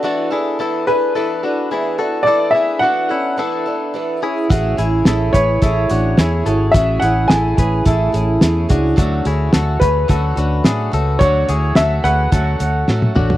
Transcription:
<<
  \new Staff \with { instrumentName = "Upright piano" } { \time 4/4 \key a \major \tempo 4 = 107 r4. b'2~ b'8 | d''8 e''8 fis''4 r2 | r4. cis''2~ cis''8 | e''8 fis''8 gis''4 r2 |
r4. b'2~ b'8 | cis''4 e''8 fis''4. r4 | }
  \new Staff \with { instrumentName = "Clean electric guitar" } { \time 4/4 \key a \major <d' fis'>8 <e' gis'>8 <e' a'>8 <gis' b'>8 <e' a'>8 <d' fis'>8 <e' gis'>8 <fis' a'>8 | <e' a'>8 <e' gis'>8 <d' fis'>8 <cis' e'>8 <e' a'>4. <e' gis'>8 | <cis' fis'>8 <e' gis'>8 <e' a'>8 <gis' b'>8 <e' a'>8 <d' fis'>8 <e' gis'>8 <fis' a'>8 | <cis' fis'>8 <e' gis'>8 <e' a'>8 <gis' b'>8 <e' a'>4. <d' fis'>8 |
<d' fis'>8 <e' gis'>8 <fis' a'>8 <gis' b'>8 <fis' a'>8 <d' fis'>8 <d' gis'>8 <fis' a'>8 | <d' fis'>8 <e' gis'>8 <fis' a'>8 <gis' b'>8 <fis' a'>4. <d' fis'>8 | }
  \new Staff \with { instrumentName = "Twelve-string acoustic guitar" } { \time 4/4 \key a \major <e b d' a'>8 <b d' a'>8 <e b d' a'>8 <b d' a'>8 <e b d' a'>8 <b d' a'>8 <e b d' a'>8 <b d' a'>8 | <e b d' a'>8 <b d' a'>8 <e b d' a'>8 <b d' a'>8 <e b d' a'>8 <b d' a'>8 <e b d' a'>8 <cis' e' gis'>8 | <a cis' e' gis'>8 <cis' e' gis'>8 <a cis' e' gis'>8 <cis' e' gis'>8 <a cis' e' gis'>8 <cis' e' gis'>8 <a cis' e' gis'>8 <cis' e' gis'>8 | <a cis' e' gis'>8 <cis' e' gis'>8 <a cis' e' gis'>8 <cis' e' gis'>8 <a cis' e' gis'>8 <cis' e' gis'>8 <a cis' e' gis'>8 <cis' e' gis'>8 |
<d fis a cis' fis'>8 <a cis' fis'>8 <fis a cis' fis'>8 <a cis' fis'>8 <d fis a cis' fis'>8 <a cis' fis'>8 <fis a cis' fis'>8 <a cis' fis'>8 | <d fis a cis' fis'>8 <a cis' fis'>8 <fis a cis' fis'>8 <a cis' fis'>8 <d fis a cis' fis'>8 <a cis' fis'>8 <fis a cis' fis'>8 <a cis' fis'>8 | }
  \new Staff \with { instrumentName = "Fingered electric bass" } { \clef bass \time 4/4 \key a \major r1 | r1 | a,,8 a,,8 a,,8 a,,8 a,,8 a,,8 e,8 gis,,8 | a,,8 a,,8 a,,8 a,,8 a,,8 a,,8 e,8 cis,8 |
d,8 d,8 d,8 d,8 d,8 d,8 a,8 cis,8 | d,8 d,8 d,8 d,8 d,8 d,8 a,8 a,,8 | }
  \new DrumStaff \with { instrumentName = "Drums" } \drummode { \time 4/4 r4 r4 r4 r4 | r4 r4 r4 r4 | <hh bd>8 hh8 <hh sn>8 <hh bd>8 <hh bd>8 hh8 <hh sn>8 hh8 | <hh bd>8 hh8 <hh sn>8 <hh bd>8 <hh bd>8 hh8 <hh sn>8 <hh bd>8 |
<hh bd>8 hh8 <hh sn>8 <hh bd>8 <hh bd>8 hh8 <hh sn>8 hh8 | <hh bd>8 hh8 <hh sn>8 hh8 <hh bd>8 hh8 sn16 tommh16 toml16 tomfh16 | }
>>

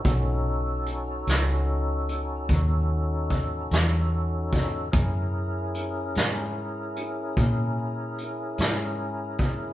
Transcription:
<<
  \new Staff \with { instrumentName = "Tonewheel organ" } { \time 12/8 \key fis \dorian \tempo 4. = 49 <cis' dis' fis' a'>1. | <cis' e' gis' ais'>1. | }
  \new Staff \with { instrumentName = "Fingered electric bass" } { \clef bass \time 12/8 \key fis \dorian b,,4. cis,4. dis,4. e,4. | fis,4. gis,4. ais,4. gis,4. | }
  \new DrumStaff \with { instrumentName = "Drums" } \drummode { \time 12/8 <hh bd>4 hh8 <hh sn>4 hh8 <hh bd>4 <hh bd>8 <hh sn>4 <hh bd sn>8 | <hh bd>4 hh8 <hh sn>4 hh8 <hh bd>4 hh8 <hh sn>4 <hh bd>8 | }
>>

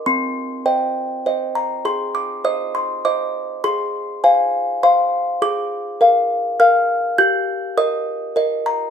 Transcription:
\new Staff \with { instrumentName = "Music box" } { \time 3/4 \key ees \major \tempo 4 = 101 << { c'''4 g''4 r8 bes''8 | c'''8 d'''8 ees'''8 c'''8 d'''4 | c'''4 aes''4 c'''4 | d'''2 f'''4 |
g'''4 ees'''4 r8 bes''8 | } \\ { c'4 <c'' ees''>4 <c'' ees''>4 | aes'4 <c'' ees''>4 <c'' ees''>4 | aes'4 <c'' f''>4 <c'' f''>4 | aes'4 <bes' f''>4 <bes' f''>4 |
g'4 <bes' ees''>4 <bes' ees''>4 | } >> }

